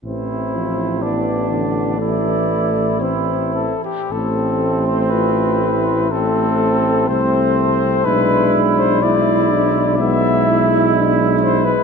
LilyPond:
<<
  \new Staff \with { instrumentName = "Cornet" } { \time 4/4 \key a \minor \tempo 4 = 62 c''4 d''2 c''8 a'16 g'16 | a'8. c''16 b'4 a'4 c''4 | b'8. c''16 d''4 e''4 r8 c''16 b'16 | }
  \new Staff \with { instrumentName = "Flugelhorn" } { \time 4/4 \key a \minor e'4 d'4 e'4 e'8 r8 | c'2 c'4 c'4 | e'4 e'4 e'2 | }
  \new Staff \with { instrumentName = "Euphonium" } { \time 4/4 \key a \minor c'4 b4 a8 a8 c'8 r8 | c'4 f'8 e'8 c'2 | d'4 e'8 d'8 b8 e'8 d'8 r8 | }
  \new Staff \with { instrumentName = "Trombone" } { \clef bass \time 4/4 \key a \minor e8 f8 e8 d8 e4 e8 r8 | a2 a4 a4 | gis4 gis4 gis2 | }
  \new Staff \with { instrumentName = "Tuba" } { \clef bass \time 4/4 \key a \minor a,,2.~ a,,8 r8 | a,,2. c,4 | b,,1 | }
>>